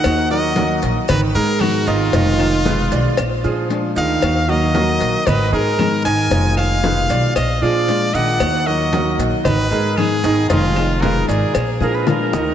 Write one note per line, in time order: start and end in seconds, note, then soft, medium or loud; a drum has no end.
0.00 0.21 D#3 medium
0.00 0.29 D#3 medium
0.00 0.21 D#4 medium
0.00 0.21 D#5 medium
0.00 0.31 F#5 loud
0.00 maracas medium
0.04 0.79 D#2 loud
0.04 0.29 A#3 medium
0.04 0.30 D#4 medium
0.04 0.29 F#4 medium
0.04 cowbell loud
0.04 high conga soft
0.04 claves medium
0.30 0.52 F#3 medium
0.30 0.55 A#3 soft
0.30 0.56 D#4 soft
0.30 0.55 F#4 medium
0.30 0.52 F#4 medium
0.30 0.52 A#4 medium
0.30 0.79 D#5 loud
0.30 high conga soft
0.30 maracas soft
0.56 1.07 D#3 medium
0.56 0.99 F#3 medium
0.56 1.08 A#3 medium
0.56 1.08 D#4 medium
0.56 1.00 F#4 medium
0.56 1.08 F#4 medium
0.56 1.00 A#4 medium
0.56 cowbell medium
0.56 high conga medium
0.56 maracas soft
0.82 0.95 A#1 loud
0.82 cowbell medium
0.82 high conga soft
0.82 maracas medium
1.08 1.34 G#1 loud
1.08 1.30 D#3 medium
1.08 1.31 D#4 medium
1.08 1.21 B4 loud
1.08 1.31 D#5 medium
1.08 muted nylon-string guitar stroke medium
1.08 cowbell loud
1.08 high conga soft
1.08 low conga medium
1.08 claves medium
1.08 maracas medium
1.35 1.85 G#2 loud
1.35 1.78 G#3 medium
1.35 1.61 B3 soft
1.35 1.61 D#4 soft
1.35 1.78 G#4 medium
1.35 1.62 A#4 loud
1.35 1.60 A#4 medium
1.35 1.78 A#4 medium
1.35 high conga soft
1.35 maracas soft
1.61 1.86 D#3 medium
1.61 1.86 G#3 medium
1.61 1.87 B3 medium
1.61 1.86 D#4 medium
1.61 1.89 F#4 loud
1.61 1.85 A#4 medium
1.61 cowbell medium
1.61 high conga medium
1.61 claves medium
1.61 maracas soft
1.87 2.12 G#1 medium
1.87 2.09 D#3 medium
1.87 2.13 B3 soft
1.87 2.12 D#4 soft
1.87 2.09 D#4 medium
1.87 3.44 F4 loud
1.87 2.12 A#4 soft
1.87 2.09 D#5 medium
1.87 cowbell medium
1.87 maracas medium
2.12 2.88 F1 loud
2.12 2.38 B2 medium
2.12 2.38 D#3 medium
2.12 2.56 D#3 medium
2.12 2.38 G#3 medium
2.12 2.56 D#4 medium
2.12 2.38 D#4 medium
2.12 2.37 F4 medium
2.12 2.57 D#5 medium
2.12 cowbell loud
2.12 high conga soft
2.12 maracas medium
2.38 2.65 G#3 soft
2.38 2.64 D#4 soft
2.38 2.64 F4 medium
2.38 cowbell medium
2.38 high conga soft
2.38 claves medium
2.38 maracas soft
2.65 3.17 B2 medium
2.65 3.17 D#3 medium
2.65 2.87 G#3 medium
2.65 3.17 G#3 medium
2.65 3.17 D#4 medium
2.65 3.17 F4 medium
2.65 2.87 G#4 medium
2.65 2.87 B4 medium
2.65 cowbell medium
2.65 high conga loud
2.65 maracas soft
2.91 3.04 B1 loud
2.91 3.35 D5 medium
2.91 cowbell medium
2.91 high conga soft
2.91 maracas medium
3.17 3.43 A#1 loud
3.17 muted nylon-string guitar stroke medium
3.17 cowbell loud
3.17 high conga soft
3.17 claves medium
3.17 maracas medium
3.44 3.94 A#2 medium
3.44 3.87 F3 medium
3.44 3.69 G#3 soft
3.44 3.69 D4 soft
3.44 3.69 F4 medium
3.44 3.87 F4 medium
3.44 3.87 G#4 medium
3.44 high conga soft
3.44 maracas soft
3.69 3.95 F3 medium
3.69 3.95 G#3 medium
3.69 3.95 D4 medium
3.69 3.95 F4 medium
3.69 cowbell medium
3.69 high conga soft
3.69 maracas soft
3.96 4.21 D2 medium
3.96 4.39 D#3 medium
3.96 4.22 G#3 soft
3.96 4.22 D4 soft
3.96 4.39 D#4 medium
3.96 4.21 F4 soft
3.96 4.39 D#5 medium
3.96 4.51 F5 loud
3.96 high conga soft
3.96 maracas medium
4.22 4.97 D#2 loud
4.22 4.47 D#3 medium
4.22 4.47 A#3 medium
4.22 4.48 D#4 medium
4.22 4.47 F#4 medium
4.22 cowbell loud
4.22 high conga soft
4.22 claves medium
4.22 maracas medium
4.48 4.70 F#3 medium
4.48 4.74 A#3 soft
4.48 4.74 D#4 soft
4.48 4.73 F#4 soft
4.48 4.70 F#4 medium
4.48 4.70 A#4 medium
4.48 5.29 D#5 loud
4.48 high conga soft
4.48 maracas soft
4.74 5.25 D#3 medium
4.74 5.17 F#3 medium
4.74 5.26 A#3 medium
4.74 5.26 D#4 medium
4.74 5.17 F#4 medium
4.74 5.26 F#4 medium
4.74 5.18 A#4 medium
4.74 cowbell medium
4.74 high conga loud
4.74 maracas soft
5.00 5.13 A#1 medium
5.00 cowbell medium
5.00 high conga soft
5.00 maracas medium
5.26 5.51 G#1 loud
5.26 5.48 D#3 medium
5.26 5.48 D#4 medium
5.26 5.53 B4 loud
5.26 5.49 D#5 medium
5.26 muted nylon-string guitar stroke medium
5.26 cowbell loud
5.26 high conga soft
5.26 low conga medium
5.26 claves medium
5.26 maracas medium
5.52 6.02 G#2 medium
5.52 5.95 G#3 medium
5.52 5.78 B3 soft
5.52 5.78 D#4 soft
5.52 5.95 G#4 medium
5.52 5.77 A#4 soft
5.52 5.96 A#4 medium
5.52 6.02 A#4 loud
5.52 high conga soft
5.52 maracas soft
5.78 6.03 D#3 medium
5.78 6.04 G#3 medium
5.78 6.04 B3 medium
5.78 6.04 D#4 medium
5.78 6.03 A#4 medium
5.78 cowbell medium
5.78 high conga medium
5.78 claves medium
5.78 maracas soft
6.04 6.30 G#1 medium
6.04 6.26 D#3 medium
6.04 6.30 B3 soft
6.04 6.26 D#4 medium
6.04 6.30 D#4 soft
6.04 6.30 A#4 medium
6.04 6.26 D#5 medium
6.04 6.54 G#5 loud
6.04 cowbell medium
6.04 maracas medium
6.30 7.06 F1 loud
6.30 6.55 B2 medium
6.30 6.56 D#3 medium
6.30 6.74 D#3 medium
6.30 6.56 G#3 medium
6.30 6.74 D#4 medium
6.30 6.56 D#4 medium
6.30 6.55 F4 medium
6.30 6.74 D#5 medium
6.30 cowbell loud
6.30 high conga soft
6.30 maracas medium
6.56 6.82 G#3 soft
6.56 6.82 D#4 soft
6.56 6.82 F4 soft
6.56 7.32 F5 loud
6.56 cowbell medium
6.56 high conga soft
6.56 claves medium
6.56 maracas soft
6.82 7.34 B2 medium
6.82 7.34 D#3 medium
6.82 7.35 G#3 medium
6.82 7.05 G#3 medium
6.82 7.35 D#4 medium
6.82 7.35 F4 medium
6.82 7.05 G#4 medium
6.82 7.05 B4 medium
6.82 cowbell medium
6.82 high conga loud
6.82 maracas soft
7.09 7.22 B1 loud
7.09 7.53 D5 medium
7.09 cowbell medium
7.09 high conga soft
7.09 maracas medium
7.35 7.60 A#1 loud
7.35 7.64 D#5 loud
7.35 muted nylon-string guitar stroke medium
7.35 cowbell loud
7.35 high conga soft
7.35 claves medium
7.35 maracas medium
7.61 8.11 A#2 medium
7.61 8.04 F3 medium
7.61 7.87 G#3 soft
7.61 7.87 D4 soft
7.61 7.86 F4 soft
7.61 8.05 F4 medium
7.61 8.05 G#4 medium
7.61 8.16 D5 loud
7.61 high conga soft
7.61 maracas soft
7.88 8.13 F3 medium
7.88 8.13 G#3 medium
7.88 8.13 D4 medium
7.88 8.12 F4 medium
7.88 cowbell medium
7.88 high conga soft
7.88 maracas soft
8.14 8.39 A#1 loud
8.14 8.57 D#3 medium
8.14 8.40 G#3 soft
8.14 8.39 D4 soft
8.14 8.57 D#4 medium
8.14 8.39 F4 soft
8.14 8.57 D#5 medium
8.14 8.68 F#5 loud
8.14 high conga soft
8.14 maracas medium
8.40 9.15 D#2 loud
8.40 8.65 D#3 medium
8.40 8.65 A#3 medium
8.40 8.66 D#4 medium
8.40 8.65 F#4 medium
8.40 cowbell loud
8.40 high conga soft
8.40 claves medium
8.40 maracas medium
8.66 8.88 F#3 medium
8.66 8.92 A#3 soft
8.66 8.92 D#4 soft
8.66 8.91 F#4 soft
8.66 8.88 F#4 medium
8.66 8.88 A#4 medium
8.66 9.18 D#5 loud
8.66 high conga soft
8.66 maracas soft
8.92 9.44 D#3 medium
8.92 9.35 F#3 medium
8.92 9.44 A#3 medium
8.92 9.44 D#4 medium
8.92 9.36 F#4 medium
8.92 9.44 F#4 medium
8.92 9.36 A#4 medium
8.92 cowbell medium
8.92 high conga medium
8.92 maracas soft
9.19 9.31 A#1 loud
9.19 cowbell medium
9.19 high conga soft
9.19 maracas medium
9.45 9.70 G#1 loud
9.45 9.66 D#3 medium
9.45 9.66 D#4 medium
9.45 9.99 B4 loud
9.45 9.66 D#5 medium
9.45 muted nylon-string guitar stroke medium
9.45 cowbell loud
9.45 high conga soft
9.45 low conga medium
9.45 claves medium
9.45 maracas medium
9.71 10.21 G#2 medium
9.71 10.14 G#3 medium
9.71 9.97 B3 soft
9.71 9.97 D#4 soft
9.71 10.14 G#4 medium
9.71 10.14 A#4 medium
9.71 9.96 A#4 medium
9.71 high conga soft
9.71 maracas soft
9.97 10.23 D#3 medium
9.97 10.23 G#3 medium
9.97 10.23 B3 medium
9.97 10.23 D#4 medium
9.97 10.48 G#4 loud
9.97 10.23 A#4 medium
9.97 cowbell medium
9.97 high conga medium
9.97 claves medium
9.97 maracas soft
10.23 10.48 G#1 medium
10.23 10.45 D#3 medium
10.23 10.50 B3 soft
10.23 10.45 D#4 medium
10.23 10.50 D#4 soft
10.23 10.49 A#4 soft
10.23 10.45 D#5 medium
10.23 cowbell medium
10.23 maracas medium
10.49 11.24 F1 loud
10.49 10.75 B2 medium
10.49 10.93 D#3 medium
10.49 10.76 D#3 medium
10.49 10.76 G#3 medium
10.49 10.93 D#4 medium
10.49 10.76 D#4 medium
10.49 11.03 F4 loud
10.49 10.75 F4 medium
10.49 10.93 D#5 medium
10.49 cowbell loud
10.49 high conga soft
10.49 maracas medium
10.76 11.02 G#3 soft
10.76 11.02 D#4 soft
10.76 11.01 F4 medium
10.76 cowbell medium
10.76 high conga soft
10.76 claves medium
10.76 maracas soft
11.02 11.53 B2 medium
11.02 11.54 D#3 medium
11.02 11.24 G#3 medium
11.02 11.54 G#3 medium
11.02 11.54 D#4 medium
11.02 11.54 F4 medium
11.02 11.24 G#4 medium
11.02 11.28 A#4 loud
11.02 11.24 B4 medium
11.02 cowbell medium
11.02 high conga loud
11.02 maracas soft
11.28 11.41 G#1 loud
11.28 12.03 G#4 medium
11.28 11.72 D5 medium
11.28 cowbell medium
11.28 high conga soft
11.28 maracas medium
11.54 11.79 A#1 loud
11.54 muted nylon-string guitar stroke medium
11.54 cowbell loud
11.54 high conga soft
11.54 claves medium
11.54 maracas medium
11.80 12.31 A#2 medium
11.80 12.24 F3 medium
11.80 12.06 G#3 soft
11.80 12.06 D4 soft
11.80 12.06 F4 medium
11.80 12.24 F4 medium
11.80 12.24 G#4 medium
11.80 11.96 A#4 loud
11.80 high bongo medium
11.80 high conga soft
11.80 maracas soft
11.95 12.09 B4 medium
12.07 12.32 F3 medium
12.07 12.32 G#3 medium
12.07 12.32 D4 medium
12.07 12.31 F4 medium
12.07 12.54 A#4 loud
12.07 cowbell medium
12.07 low bongo medium
12.07 high conga soft
12.07 maracas soft
12.32 12.54 D2 medium
12.32 12.54 D#3 medium
12.32 12.54 G#3 soft
12.32 12.54 D4 soft
12.32 12.54 D#4 medium
12.32 12.54 F4 soft
12.32 12.54 D#5 medium
12.32 low bongo medium
12.32 high conga soft
12.32 maracas medium